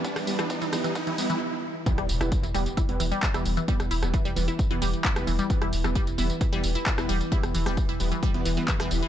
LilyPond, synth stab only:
\new Staff \with { instrumentName = "Synth stab" } { \clef bass \time 4/4 \key e \minor \tempo 4 = 132 <e g b>16 r16 <e g b>16 r16 <e g b>16 r16 <e g b>16 r16 <e g b>16 r16 <e g b>16 r4 r16 | <e g b>16 r8 <e g b>16 r8 <e g b>16 r8 <e g b>16 r8. <e g b>16 r8 | <e g b>16 r8 <e g b>16 r8 <e g b>16 r8 <e g b>16 r8. <e g b>16 r8 | <e g b>16 r8 <e g b>16 r8 <e g b>16 r8 <e g b>16 r8. <e g b>16 r8 |
<e g b>16 r8 <e g b>16 r8 <e g b>16 r8 <e g b>16 r16 <e g b>16 r16 <e g b>16 <e g b>16 r16 | }